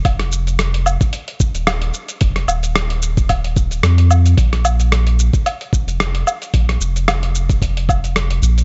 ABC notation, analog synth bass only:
X:1
M:4/4
L:1/16
Q:"Swing 16ths" 1/4=111
K:Eblyd
V:1 name="Analog synth bass" clef=bass
F,,,6- F,,, z4 E,,,3 z2 | F,,,2 E,,,8- E,,,2 F,,4 | B,,,6- B,,, z4 F,,,3 z2 | B,,,2 F,,,12 B,,,2 |]